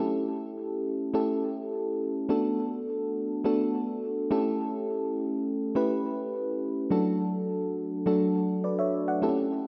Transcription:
0.00 A3 C#4 E4 G4 A4
1.14 A3 C#4 E4 G4 A4
2.29 A3 B3 D4 F#4 A4
3.44 A3 B3 D4 F#4 A4
4.31 A3 C#4 E4 G4 A4
5.75 A3 C#4 E4 G4 B4
6.90 F#3 A3 D4 F#4 A4
8.06 F#3 A3 D4 F#4 A4
8.64 B4 D5
8.79 C#5 E5
9.08 D5 F#5
9.22 A3 C4 E4 G4 A4
9.29 C#4

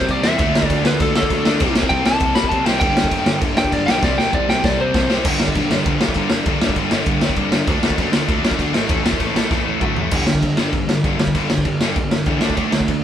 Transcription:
Already playing: C3 G3 C4 C5
0.01 kick
0.06 C2 C3 G3 C4, kick, crash
0.11 D5
0.22 E2 C3 G3 C4 E5, snare
0.37 D2 D3 A3 D4, kick, crash
0.55 snare
0.62 kick
0.67 D2 D5, kick, crash
0.83 D2 B4, snare
1.00 D2 A4, kick, crash
1.14 D3 A3 D4 A4, snare
1.23 kick
1.29 D2 D3 A3 D4, kick, crash
1.45 D2 D3 A3 D4, snare
1.60 C2 C3 G3 C4, kick, crash
1.76 snare
1.83 kick
1.89 C2 G5, kick, crash
2.06 C2 A5, snare
2.20 C2, kick, crash
2.35 C3 G3 C4 B5, snare
2.44 kick
2.49 C2 C3 G3 C4 A5, kick, crash
2.65 C2 C3 G3 C4 G5, snare
2.80 G1 G2 D3 G3 G5, kick, crash
2.97 snare
3.04 kick
3.11 G1, kick, crash
3.26 G1, snare
3.42 G1, kick, crash
3.55 G2 D3 G3 G5, snare
3.65 kick
3.70 G1 G2 D3 G3 D5, kick, crash
3.86 B1 G2 D3 G3 G5, snare
4.01 C2 C3 G3 C4 D5, kick, snare
4.18 G5, snare
4.33 C2 D5, kick
4.48 C2 G5, snare
4.64 C2 D5, kick, snare
4.78 C3 G3 C4 C5
4.92 C2 C3 G3 C4, kick, snare
5.08 C2 C3 G3 C4, snare
5.24 G1 G2 D3 G3, kick, crash
5.40 G1 G2 D3 G3, snare
5.48 kick
5.55 B1 G2 D3 G3, kick, crash
5.70 G1 G2 D3 G3, snare
5.86 G1 G2 D3 G3, kick, crash
6.01 B1 G2 D3 G3, snare
6.08 kick
6.14 G1 G2 D3 G3, kick, crash
6.30 G1 G2 D3 G3, snare
6.46 G1 G2 D3 G3, kick, crash
6.60 D2 G2 D3 G3, snare
6.69 kick
6.76 G1 G2 D3 G3, kick, crash
6.91 G1 G2 D3 G3, snare
7.06 G1 G2 D3 G3, kick, crash
7.21 G2 D3 G3, snare
7.29 kick
7.36 C2 G2 D3 G3, kick, crash
7.51 G1 G2 D3 G3, snare
7.67 D2 D3 A3 D4, kick, crash
7.81 D2 D3 A3 D4, snare
7.90 kick
7.97 F#2 D3 A3 D4, kick, crash
8.12 D2 D3 A3 D4, snare
8.28 D2 D3 A3 D4, kick, crash
8.42 F#2 D3 A3 D4, snare
8.51 kick
8.58 D2 D3 A3 D4, kick, crash
8.73 A1 A2 E3 A3, snare
8.89 A1 A2 E3 A3, kick, crash
9.04 E1 A2 E3 A3, snare
9.13 kick
9.20 A1 A2 E3 A3, kick, crash
9.34 A1 A2 E3 A3, snare
9.51 A1 A2 E3 A3, kick, snare
9.67 A2 E3 A3
9.81 D2 A2 E3 A3, kick, mid tom
9.96 A1 A2 E3 A3, floor tom
10.11 G1 G2 D3 G3, kick, crash
10.25 G1 G2 D3, snare
10.35 kick
10.42 G1 G2 D3, kick, crash
10.57 G2 D3 G3, snare
10.72 G1 G2 D3, kick, crash
10.87 G1 G2 D3, snare
11.03 G1 G2 D3 G3, kick, crash
11.18 G1 G2 D3 G3, snare
11.27 kick
11.35 G1 G2 D3 G3, kick, crash
11.50 G1 G2 D3, snare
11.58 kick
11.65 G1 G2 D3, kick, crash
11.81 G2 D3 G3, snare
11.96 G1 G2 D3, kick, crash
12.11 G1 G2 D3, snare
12.26 E2 G2 D3 G3, kick, crash
12.40 D2 D3 A3 D4, snare
12.50 kick
12.56 D2 D3 A3 D4, kick, crash
12.72 D2 D3 A3, snare
12.80 kick
12.87 D2 D3 A3, kick, crash

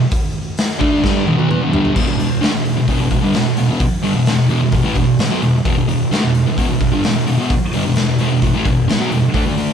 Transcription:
0.11 kick, open hi-hat
0.57 snare, open hi-hat
0.70 snare
0.79 D3 A3 D4, kick
1.02 G2 D3 G3, kick, snare
1.27 E2 B2, high tom
1.37 B2 F#3, high tom
1.49 E3 B3, mid tom
1.61 E2 B2
1.71 G2 D3 G3, floor tom
1.85 floor tom
1.94 E2 B2, kick, crash
2.07 E2 B2
2.18 E2 B2, open hi-hat
2.41 D3 A3, snare, open hi-hat
2.52 E2 B2
2.65 open hi-hat
2.77 E2 B2
2.88 E2 B2, kick, open hi-hat
3.00 E2 B2
3.11 E2 B2, kick, open hi-hat
3.22 G2 D3
3.34 E2 B2, snare, open hi-hat
3.57 E2 B2, open hi-hat
3.69 E2 B2
3.80 muted distorted electric guitar stroke, kick, open hi-hat
4.03 G2 D3, open hi-hat
4.15 E2 B2
4.26 E2 B2, snare, open hi-hat
4.49 E2 B2, open hi-hat
4.62 E2 B2
4.72 E2 B2, kick, open hi-hat
4.83 A2 E3
4.95 E2 B2, kick, open hi-hat
5.19 E2 B2, snare, open hi-hat
5.30 B2 F#3
5.43 E2 B2, open hi-hat
5.55 muted distorted electric guitar stroke
5.65 E2 B2, kick, open hi-hat
5.77 E2 B2
5.88 E2 B2, open hi-hat
6.12 D3 A3, snare, open hi-hat
6.22 E2 B2
6.35 open hi-hat
6.46 E2 B2
6.58 E2 B2, kick, open hi-hat
6.69 E2 B2
6.81 E2 B2, kick, open hi-hat
6.92 G2 D3
7.04 E2 B2, snare, open hi-hat
7.26 E2 B2, open hi-hat
7.38 E2 B2
7.50 muted distorted electric guitar stroke, kick, open hi-hat
7.73 G2 D3, open hi-hat
7.85 E2 B2
7.96 E2 B2, snare, open hi-hat
8.19 E2 B2, open hi-hat
8.31 E2 B2
8.42 E2 B2, kick, open hi-hat
8.54 A2 E3
8.65 E2 B2, kick, open hi-hat
8.88 E2 B2, snare, open hi-hat
8.98 B2 F#3
9.11 E2 B2, open hi-hat
9.23 muted distorted electric guitar stroke
9.33 D3 A3, kick, open hi-hat
9.46 D3 A3
9.57 D3 A3, open hi-hat

